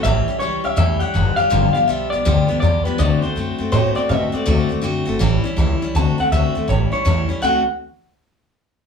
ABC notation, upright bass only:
X:1
M:4/4
L:1/8
Q:"Swing" 1/4=162
K:Ador
V:1 name="Upright bass" clef=bass
A,,, z ^C,, C,, E,, z F,,, z | G,,, z B,,, B,,, D,, z E,, z | D,, z F,, F,, A,, z B,, z | D,, z F,, G,,, A,,, z ^C,, z |
D,, z D,, z A,,, z E,, z | D,, z6 z |]